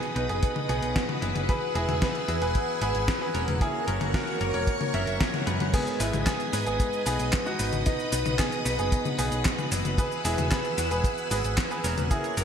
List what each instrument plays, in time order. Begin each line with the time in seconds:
Already playing: clean electric guitar B2 B3 D#4 F#4 B4, grand piano B3 G#4, string machine B4 D#5 F#5 D#6
0.03 closed hi-hat
0.15 picked electric bass B1, clean electric guitar B2 B3 D#4 F#4 B4, closed hi-hat
0.29 picked electric bass F#1, grand piano B3 G#4, closed hi-hat
0.43 kick, closed hi-hat
0.56 high tom
0.68 picked electric bass B1, clean electric guitar B2 B3 D#4 F#4 B4, grand piano B3 G#4, closed hi-hat
0.82 picked electric bass B1, closed hi-hat
0.96 kick, snare, closed hi-hat
1.09 high tom
1.22 picked electric bass F#1, clean electric guitar E3 B3 E4 F#4 G#4, closed hi-hat
1.35 picked electric bass F#1, closed hi-hat, high tom
1.49 grand piano G#4 B4, string machine G#5 E6, kick, closed hi-hat
1.75 picked electric bass E1, clean electric guitar E3 B3 E4 F#4 G#4, grand piano E4 G#4, closed hi-hat
1.88 picked electric bass E1, closed hi-hat, high tom
2.02 grand piano G#4 B4, kick, snare, closed hi-hat
2.15 closed hi-hat
2.28 picked electric bass E2, clean electric guitar E3 B3 E4 F#4 G#4, closed hi-hat
2.41 picked electric bass E1, grand piano G#4 B4, closed hi-hat
2.55 kick, closed hi-hat
2.81 picked electric bass G#1, clean electric guitar E3 B3 E4 F#4 G#4, grand piano G#4 B4, closed hi-hat
2.95 picked electric bass G#1, closed hi-hat
3.08 kick, snare, closed hi-hat
3.21 grand piano G#4 B4
3.34 picked electric bass E1, clean electric guitar A#3 C#4 F#4 A#4, closed hi-hat
3.48 picked electric bass E1, closed hi-hat, high tom
3.61 grand piano E4 G#4, string machine A#4 C#5 C#6, kick, closed hi-hat
3.87 picked electric bass F#1, clean electric guitar A#3 C#4 F#4 A#4, closed hi-hat
4.01 picked electric bass F#1, closed hi-hat, high tom
4.14 grand piano F#4 A#4, kick, snare, closed hi-hat
4.28 closed hi-hat
4.41 picked electric bass F#1, clean electric guitar A#3 C#4 F#4 A#4, closed hi-hat
4.54 picked electric bass E1, grand piano A#4 C#5, closed hi-hat
4.67 kick, closed hi-hat
4.81 high tom
4.94 picked electric bass F#1, clean electric guitar A#3 C#4 F#4 A#4, grand piano C#5 E5, closed hi-hat
5.07 picked electric bass F#1, closed hi-hat
5.21 kick, snare, closed hi-hat
5.34 closed hi-hat, high tom
5.46 picked electric bass F#2, clean electric guitar G#2 B3 D#4 G#4 B4, closed hi-hat
5.60 picked electric bass F#2, closed hi-hat, high tom
5.74 grand piano B3 G#4, string machine B4 D#5 G#5 D#6, kick, closed hi-hat, crash, cabasa
5.87 cabasa
6.00 picked electric bass G#1, clean electric guitar G#2 B3 D#4 G#4 B4, grand piano G#3 E4, open hi-hat, cabasa
6.13 picked electric bass G#1, closed hi-hat, high tom, cabasa
6.26 grand piano B3 G#4, kick, snare, clap, closed hi-hat, cabasa
6.40 closed hi-hat, cabasa
6.53 picked electric bass G#2, clean electric guitar G#2 B3 D#4 G#4 B4, open hi-hat, cabasa
6.67 picked electric bass G#1, grand piano B3 G#4, closed hi-hat, cabasa
6.80 kick, closed hi-hat, cabasa
6.93 cabasa
7.06 picked electric bass B1, clean electric guitar G#2 B3 D#4 G#4 B4, grand piano B3 G#4, open hi-hat, cabasa
7.20 picked electric bass B1, closed hi-hat, cabasa
7.33 kick, snare, clap, closed hi-hat, cabasa
7.46 grand piano D#4 F#4, cabasa
7.59 picked electric bass G#1, clean electric guitar B2 B3 D#4 F#4 B4, open hi-hat, cabasa
7.73 picked electric bass G#1, closed hi-hat, high tom, cabasa
7.86 grand piano B3 D#4, string machine F#5, kick, closed hi-hat, cabasa
7.99 cabasa
8.12 picked electric bass B1, clean electric guitar B2 B3 D#4 F#4 B4, open hi-hat, cabasa
8.26 picked electric bass B1, closed hi-hat, high tom, cabasa
8.39 grand piano B3 G#4, kick, snare, clap, closed hi-hat, cabasa
8.52 closed hi-hat, cabasa
8.65 picked electric bass B1, clean electric guitar B2 B3 D#4 F#4 B4, open hi-hat, cabasa
8.79 picked electric bass F#1, grand piano B3 G#4, closed hi-hat, cabasa
8.92 kick, closed hi-hat, cabasa
9.05 high tom, cabasa
9.18 picked electric bass B1, clean electric guitar B2 B3 D#4 F#4 B4, grand piano B3 G#4, open hi-hat, cabasa
9.32 picked electric bass B1, closed hi-hat, cabasa
9.45 kick, snare, clap, closed hi-hat, cabasa
9.59 high tom, cabasa
9.71 picked electric bass F#1, clean electric guitar E3 B3 E4 F#4 G#4, open hi-hat, cabasa
9.85 picked electric bass F#1, closed hi-hat, high tom, cabasa
9.98 grand piano G#4 B4, string machine G#5 E6, kick, closed hi-hat, cabasa
10.12 cabasa
10.25 picked electric bass E1, clean electric guitar E3 B3 E4 F#4 G#4, grand piano E4 G#4, open hi-hat, cabasa
10.38 picked electric bass E1, closed hi-hat, high tom, cabasa
10.51 grand piano G#4 B4, kick, snare, clap, closed hi-hat, cabasa
10.65 closed hi-hat, cabasa
10.77 picked electric bass E2, clean electric guitar E3 B3 E4 F#4 G#4, open hi-hat, cabasa
10.91 picked electric bass E1, grand piano G#4 B4, closed hi-hat, cabasa
11.04 kick, closed hi-hat, cabasa
11.18 cabasa
11.30 picked electric bass G#1, clean electric guitar E3 B3 E4 F#4 G#4, grand piano G#4 B4, open hi-hat, cabasa
11.44 picked electric bass G#1, closed hi-hat, cabasa
11.58 kick, snare, clap, closed hi-hat, cabasa
11.71 grand piano G#4 B4, cabasa
11.84 picked electric bass E1, clean electric guitar A#3 C#4 F#4 A#4, open hi-hat, cabasa
11.97 picked electric bass E1, closed hi-hat, high tom, cabasa
12.11 grand piano E4 G#4, string machine A#4 C#5 C#6, kick, closed hi-hat, cabasa
12.24 closed hi-hat, cabasa
12.37 picked electric bass F#1, clean electric guitar A#3 C#4 F#4 A#4, open hi-hat, cabasa